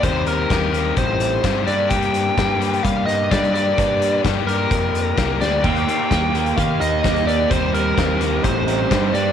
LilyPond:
<<
  \new Staff \with { instrumentName = "Lead electric guitar" } { \time 4/4 \key c \dorian \tempo 4 = 128 c''8 bes'4. c''4. d''8 | g''2 f''8 ees''8 d''8 d''8~ | d''4 r8 bes'2 d''8 | g''2 f''8 ees''4 d''8 |
c''8 bes'4. c''4. d''8 | }
  \new Staff \with { instrumentName = "Overdriven electric guitar" } { \time 4/4 \key c \dorian <g c' ees' g'>4 <g c' ees' g'>8 <c' ees' g'>4. <g c' ees' g'>8 <bes d' g'>8 | <bes d' g'>4 <bes d' g'>8 <d' g'>4. <bes d' g'>8 <d' g'>8 | <bes d' g'>4 <bes d' g'>8 <d' g'>4. <bes d' g'>8 <d' g'>8 | <bes ees' g'>4 <bes ees' g'>8 <ees' g'>4. <bes ees' g'>8 <ees' g'>8 |
<g c' ees' g'>4 <g c' ees' g'>8 <c' ees' g'>4. <g c' ees' g'>8 <bes d' g'>8 | }
  \new Staff \with { instrumentName = "Overdriven electric guitar" } { \time 4/4 \key c \dorian r1 | r1 | r1 | bes8 bes8 bes8 bes8 bes8 ees'8 bes8 bes8 |
g8 g8 c'8 g8 c'8 ees'8 g8 g8 | }
  \new Staff \with { instrumentName = "Picked electric bass" } { \clef bass \time 4/4 \key c \dorian ees,4 ees,4 a,,4 g,8 g,8~ | g,4 g,4 g8 g,8 g,4 | g,4 g,4 f,4 c,8 d,8 | ees,8 r8 ees,4 ees8 ees,8 ees,4 |
ees,4 ees,4 a,,4 g,8 g,8 | }
  \new DrumStaff \with { instrumentName = "Drums" } \drummode { \time 4/4 <hh bd>8 hh8 <hh bd sn>8 hh8 <hh bd>8 hh8 <hh bd sn>8 hh8 | <hh bd>16 hh16 hh8 <hh bd sn>8 hh16 hh16 <hh bd>8 hh8 <hh bd sn>16 hh16 hh8 | <hh bd>8 hh8 <hh bd sn>8 hh8 <hh bd>8 hh8 <hh bd sn>8 <hh sn>8 | <cymc bd>16 hh16 hh8 <hh bd sn>8 hh16 hh16 <hh bd>8 hh8 <hh bd sn>16 hh16 hh8 |
<hh bd>8 hh8 <hh bd sn>8 hh8 <hh bd>8 hh8 <hh bd sn>8 hh8 | }
>>